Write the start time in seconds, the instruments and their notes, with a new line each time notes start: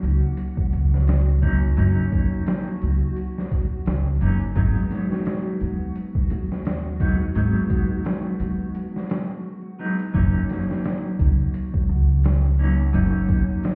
Already playing: clean electric guitar F#3 A#3 C#4 D#4, synth texture F#4
0.03 upright bass C#2, closed hi-hat
0.37 closed hi-hat
0.57 kick
0.73 upright bass C#2, closed hi-hat
0.94 snare
1.08 snare, closed hi-hat
1.42 clean electric guitar F#3 A#3 C#4 D#4, kick, closed hi-hat
1.77 upright bass F#1, clean electric guitar F#3 A#3 C#4 D#4, closed hi-hat
2.12 kick, closed hi-hat
2.46 snare, closed hi-hat
2.82 upright bass C#2, closed hi-hat
3.16 closed hi-hat
3.38 snare
3.51 kick, closed hi-hat
3.86 upright bass C#2, snare, closed hi-hat
4.21 upright bass F#1, clean electric guitar F#3 A#3 C#4 D#4, closed hi-hat
4.41 closed hi-hat
4.56 upright bass G#1, clean electric guitar F#3 G#3 B3 D#4, kick, closed hi-hat
4.91 snare, closed hi-hat
5.12 snare
5.25 snare, closed hi-hat
5.61 upright bass D#2, closed hi-hat
5.96 closed hi-hat
6.15 kick
6.30 upright bass D#2, closed hi-hat
6.52 snare
6.65 snare, closed hi-hat
7.00 clean electric guitar F#3 G#3 B3 D#4, kick, closed hi-hat
7.35 upright bass G#1, clean electric guitar F#3 G#3 B3 D#4, closed hi-hat
7.70 kick, closed hi-hat
8.05 snare, closed hi-hat
8.40 upright bass D#2, closed hi-hat
8.75 closed hi-hat
8.96 snare
9.10 snare, closed hi-hat
9.79 clean electric guitar F#3 G#3 B3 D#4
9.99 closed hi-hat
10.14 upright bass F#1, clean electric guitar F#3 A#3 C#4 D#4, kick, closed hi-hat
10.49 snare, closed hi-hat
10.71 snare
10.84 snare, closed hi-hat
11.19 upright bass C#2, kick, closed hi-hat
11.54 closed hi-hat
11.74 kick
11.89 upright bass C#2
12.24 snare, closed hi-hat
12.59 clean electric guitar F#3 A#3 C#4 D#4
12.93 upright bass F#1, clean electric guitar F#3 A#3 C#4 D#4, closed hi-hat
13.29 kick, closed hi-hat
13.64 snare, closed hi-hat